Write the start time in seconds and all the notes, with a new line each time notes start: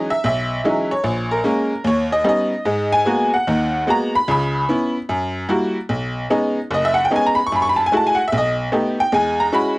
Already playing: D#4
0.10 E5
0.24 B1 E5
0.64 E3 F#3 G#3 C#4 D#4
0.91 C#5
1.04 A#1
1.31 A#4
1.44 G#3 A#3 C#4
1.84 D#2 C#5
2.12 D#5
2.24 G3 B3 C#4 D#4
2.29 D#5
2.65 G#2 G#3
2.92 G#5
3.05 G#3 A#3 B3 F#4
3.34 F#5
3.47 D#2 D#3
3.87 G#3 A#3 B3 F#4 A#5
4.15 B5
4.28 C#2 C#3 B5
4.69 B3 C#4 E4
5.09 F#2
5.49 G3 A#3 E4 F#4
5.89 B1
6.30 G#3 B3 C#4 D#4
6.71 F#1 D#5
6.85 E5
6.94 F#5
7.05 G5
7.11 G#3 B3 C#4 D#4
7.16 G#5
7.26 A#5
7.35 B5
7.47 C#6
7.52 F#2 B5
7.62 C#6
7.69 B5
7.76 A5
7.86 G#5
7.92 G#3 A3 E4 F#4
7.97 A5
8.07 G#5
8.15 F#5
8.28 E5
8.32 B1
8.38 D#5
8.72 A3 B3 D#4 G4
9.00 G5
9.12 E2 G#3 G#5
9.40 A#5
9.52 G#3 C#4 E4 F#4 B5